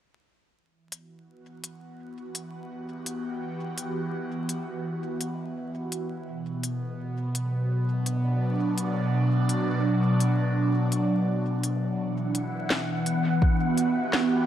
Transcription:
0.57 E3
0.86 B3
0.91 F#4, closed hi-hat
1.64 closed hi-hat
2.35 closed hi-hat
2.44 G4
3.06 closed hi-hat
3.78 closed hi-hat
4.49 closed hi-hat
5.21 closed hi-hat
5.92 closed hi-hat
6.28 B2
6.63 closed hi-hat
7.33 F#3, closed hi-hat
7.95 D4
8.06 closed hi-hat
8.78 closed hi-hat
9.49 closed hi-hat
10.20 closed hi-hat
10.92 closed hi-hat
11.63 closed hi-hat
11.99 E3 F#5
12.35 closed hi-hat
12.70 B3, snare
13.06 closed hi-hat
13.36 F#4
13.42 kick
13.69 G4
13.78 closed hi-hat
14.13 snare

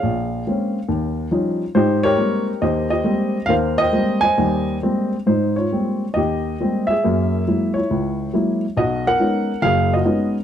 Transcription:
Already playing: G#4 C#5 F5
0.03 A#1
0.47 G#3 A#3 C4 C#4
0.88 D#2
1.31 F3 G3 C#4 D#4
1.75 G#2 D#4 G4 C5
2.03 G4 A#4 C#5
2.18 G3 G#3 A#3 C4
2.62 D#2 G4 C5 D#5
2.90 G4 C5 D#5
3.04 G3 G#3 A#3 C4
3.46 D#2 A#4 F5
3.50 C5
3.78 C5 D#5 G5
3.92 G3 G#3 A#3 C4
4.21 C5 D#5 G#5
4.38 D#2 G3
4.83 G3 G#3 A#3 C4
5.27 G#2 D#4 C5
5.56 F4 C#5
5.72 G3 G#3 A#3 C4
6.14 D#2 G4 D#5
6.60 G3 G#3 A#3 C4
6.87 G#4 E5
7.04 F#2 A#3
7.47 F#3 G#3 A#3 E4
7.74 E4 C#5
7.90 C#2
8.33 F#3 G#3 A#3 E4
8.77 B1 F#4 D#5
9.07 A#4 F#5
9.20 G#3 B3 C#4 D#4
9.62 F#1 F#2 G#4 F5
9.93 F#4 D#5
10.05 G#3 B3 C#4 D#4

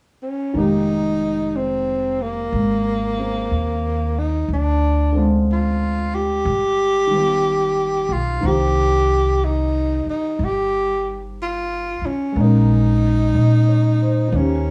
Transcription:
0.23 C#4
0.54 F1 D#3 G#3 A#3
0.58 D#4 G4
1.57 C4
2.22 A#3
2.52 G#1
3.17 A#3 C4 G#4
3.50 D#2
4.19 D#4
4.48 D2
4.53 D4
5.12 D3 G#3 C4
5.18 F4
5.52 F4
6.15 G4
6.45 G1
7.07 D#3
7.11 G3 B3
7.18 F4
8.09 B1 F4
8.41 C2 D#3 A#3 C5
8.46 G4
9.45 D#4
10.06 D#4, muted upright bass stroke
10.39 G1
10.44 G4
11.42 F4
12.01 muted upright bass stroke
12.06 C#4
12.32 A#1 G#3
12.36 A#3 C#4
12.41 D#4 A#4
13.34 A#2 D#5
13.69 C#5
14.02 C5
14.28 D#3
14.32 D#2 A#3 C#4
14.40 G4

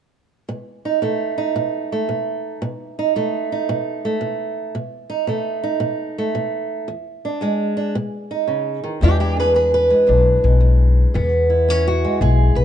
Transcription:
0.49 B2
0.85 D#4
1.02 B2 A3
1.38 D#4
1.56 B2
1.92 A3
2.09 B2
2.62 B2
2.99 D#4
3.16 B2 A3
3.52 D#4
3.69 B2
4.05 A3
4.21 B2
4.75 B2
5.10 D#4
5.27 B2 A3
5.63 D#4
5.80 B2
6.18 A3
6.35 B2
6.88 E2
7.25 D4
7.41 E2 G#3
7.77 D4
7.95 B2
8.31 D#4
8.47 C#3
8.84 D#3
9.01 E2 E3 G#3 D4 E4 G4
9.20 E4 G4
9.37 D4 G#4 B4
9.54 E2 G#4 B4
9.74 B4
9.90 G#3
10.07 B1 E2 D4
10.44 B1 G#3
10.61 E2
11.14 E2 B3
11.50 E4
11.69 E2 C#4
11.88 F#4
12.05 G#3
12.21 B1 E2 G#4
12.55 B1 B4

